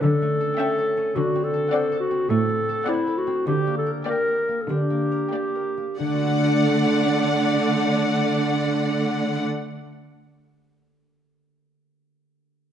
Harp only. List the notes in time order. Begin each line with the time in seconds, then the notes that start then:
Already playing: A3 C#4 A4 C#5
0.03 D3
0.22 A3
0.41 A4
0.59 C#5
0.78 A4
0.97 C#4
1.16 D3
1.35 C4
1.54 A4
1.73 C5
1.92 A4
2.11 C4
2.30 A3
2.49 C4
2.69 A4
2.88 C5
3.07 A4
3.27 C4
3.47 D3
3.67 A#3
3.86 A#4
4.07 G4
4.27 A#4
4.48 A#3
4.69 D4
4.90 A#3
5.12 A#4
5.33 G4
5.55 A#4
5.77 A#3
6.00 D3
6.07 D4
6.14 F#4
6.21 A4
6.28 F#5